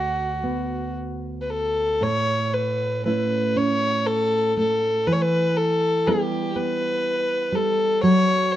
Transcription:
Already playing: nylon-string guitar D2 B3, fiddle F#4
0.43 nylon-string guitar B3
1.41 fiddle B4
1.50 fiddle A4
2.01 nylon-string guitar A2, fiddle C#5
2.54 fiddle B4
3.05 nylon-string guitar A3 C#4 E4, fiddle B4
3.56 nylon-string guitar C#4, fiddle C#5
4.06 fiddle A4
4.57 nylon-string guitar A3, fiddle A4
5.07 nylon-string guitar E3, fiddle B4
5.13 fiddle C#5
5.22 fiddle B4
5.57 fiddle A4
6.07 nylon-string guitar G3 B3 E4, fiddle G4
6.55 nylon-string guitar B3, fiddle B4
7.52 nylon-string guitar G3, fiddle A4
8.03 nylon-string guitar F#3, fiddle C#5
8.52 fiddle B4

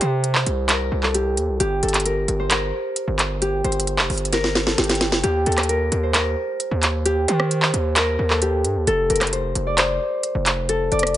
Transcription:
Already playing: harp G4 A4
0.01 808-style bass C3, harp C5, closed hi-hat
0.24 closed hi-hat
0.35 clap
0.46 808-style bass C2, closed hi-hat
0.69 harp A#4, clap, closed hi-hat
0.92 808-style bass C2
1.03 harp A4, clap
1.14 harp G4, closed hi-hat
1.37 808-style bass D#2, closed hi-hat
1.49 808-style bass C2
1.60 808-style bass G1, harp G4, closed hi-hat
1.83 808-style bass G1, harp A4, closed hi-hat
1.89 closed hi-hat
1.94 clap, closed hi-hat
2.00 closed hi-hat
2.05 harp A#4, closed hi-hat
2.28 808-style bass G1, closed hi-hat
2.39 harp C5
2.51 harp A#4, clap, closed hi-hat
2.96 closed hi-hat
3.08 808-style bass G1
3.19 clap, closed hi-hat
3.42 harp G4, closed hi-hat
3.64 808-style bass G1, harp C5, closed hi-hat
3.72 closed hi-hat
3.80 closed hi-hat
3.87 closed hi-hat
3.98 808-style bass F1, clap
4.10 808-style bass G1, closed hi-hat, open hi-hat
4.18 closed hi-hat
4.25 closed hi-hat
4.33 harp A#4, snare, closed hi-hat
4.44 snare
4.55 snare
4.67 harp A4, snare
4.78 808-style bass G1, harp G4, snare, closed hi-hat
4.84 closed hi-hat
4.89 snare, closed hi-hat
4.95 closed hi-hat
5.01 snare, closed hi-hat
5.12 808-style bass F1, snare
5.23 808-style bass D#2, harp G4, closed hi-hat
5.46 808-style bass D#2, harp A4, closed hi-hat
5.52 closed hi-hat
5.58 cross-stick, clap, closed hi-hat
5.63 closed hi-hat
5.69 harp A#4, closed hi-hat
5.92 808-style bass D#2, closed hi-hat
6.03 harp C5
6.14 harp A#4, clap, closed hi-hat
6.60 closed hi-hat
6.71 808-style bass D#2
6.83 clap, closed hi-hat
7.05 harp G4, closed hi-hat
7.28 808-style bass D#3, harp C5, closed hi-hat
7.40 cross-stick
7.51 closed hi-hat
7.62 clap
7.74 808-style bass D#2, closed hi-hat
7.96 harp A#4, clap, closed hi-hat
8.19 808-style bass D#2
8.30 harp A4, clap
8.42 harp G4, closed hi-hat
8.64 808-style bass G2, closed hi-hat
8.76 808-style bass D#2
8.87 808-style bass F1, harp A4, closed hi-hat
9.10 808-style bass F1, harp A#4, closed hi-hat
9.16 closed hi-hat
9.21 cross-stick, clap, closed hi-hat
9.27 closed hi-hat
9.33 harp C5, closed hi-hat
9.55 808-style bass F1, closed hi-hat
9.67 harp D5
9.78 harp C5, clap, closed hi-hat
10.23 closed hi-hat
10.35 808-style bass F1
10.46 clap, closed hi-hat
10.69 harp A4, closed hi-hat
10.92 808-style bass F1, harp D5, closed hi-hat
10.99 cross-stick, closed hi-hat
11.07 closed hi-hat

